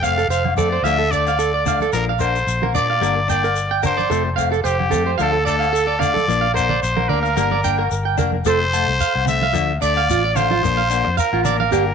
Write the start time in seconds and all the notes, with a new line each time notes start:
Already playing: F1
0.03 A3 C4 F5, low agogo, shekere
0.18 A4, shekere
0.28 F1 C5 F5, shekere
0.45 high conga, low agogo
0.56 F2 C4 A4 D5, low conga, shekere
0.60 A3
0.72 C5
0.83 D2 F3 A3 E5 F5, low agogo, shekere
0.87 D4
0.99 A4
1.11 A3 D4 D5, shekere
1.26 F5, low agogo, shekere
1.39 A4, shekere
1.54 D5
1.66 A3 D4 F5, low conga, low agogo, shekere
1.81 A4, high conga, shekere
1.92 A#1 F3 A#3 A#4, shekere
1.97 D4
2.09 F5
2.19 D4 A#4 C5, muted clean electric guitar stroke, low agogo, shekere
2.35 shekere
2.47 A#1, shekere
2.63 A#4, high conga, low agogo
2.74 A#2 D4 D5, low conga, shekere
2.78 A#3
2.90 F5
3.01 G1 G3 A#3 D4 A#4, low agogo, shekere
3.28 A#3 D4 D5 G5, shekere
3.42 A#4, low agogo, shekere
3.56 shekere
3.71 G5
3.82 D4 A#4 C5, low conga, low agogo, shekere
3.97 D5, high conga, shekere
4.10 F1 F3 A3 C4 A4, shekere
4.36 C4 F5, low agogo, shekere
4.40 A3
4.52 A4, shekere
4.64 F1 G4 C5, shekere
4.79 high conga, low agogo
4.91 F2 C4 A4, low conga, shekere
4.96 A3
5.06 C5
5.18 D2 F3 A3 D4 A4 F5, low agogo, shekere
5.32 A4
5.45 D4 A4 D5, shekere
5.49 A3
5.59 F5, low agogo, shekere
5.73 A4, shekere
5.87 D5
5.99 D4 D5 F5, low conga, low agogo, shekere
6.03 A3
6.14 A4, high conga, shekere
6.28 A#1 F3 A#3 D4, shekere
6.41 F5
6.54 D4 A#4 C5, low agogo, shekere
6.59 A#3
6.69 D5, low conga
6.82 A#1 C5, shekere
6.96 A#4, high conga, low agogo
7.09 D2 D4 A#4 D5, low conga
7.14 A#3
7.23 F5, shekere
7.36 G1 G3 A#3 D4 A#4, high conga, low agogo, shekere
7.51 D5, high conga
7.64 A#3 D4 G5, shekere
7.78 A#4, low agogo
7.91 G1, shekere
8.05 G5
8.18 F1 A#3 D4 A#4, low conga, low agogo, shekere
8.32 high conga
8.45 F1 F3 A3 C4 A4 C5, shekere
8.73 A3 A5, low agogo, shekere
8.88 C2
9.00 F5, shekere
9.15 C2, low agogo
9.25 C4 E5, low conga, shekere
9.29 A3
9.42 F5, high conga
9.53 D2 F3 A3 D4, low agogo, shekere
9.81 D2 A3 D4 D5, shekere
9.96 F5, low agogo
10.10 A1 F4, shekere
10.24 D5
10.35 A3 D4 C5 F5, low conga, low agogo, shekere
10.51 F4, high conga
10.63 A#1 F3 A#3 D4, shekere
10.77 F5
10.90 A#3 D4, low agogo, shekere
11.05 F2, muted clean electric guitar stroke
11.17 A#4 F5, shekere
11.33 A1 F4, low agogo
11.43 D4 A#4 D5, low conga, shekere
11.48 A#3
11.60 F5, high conga
11.72 G1 A#3 D4 G4, low agogo, shekere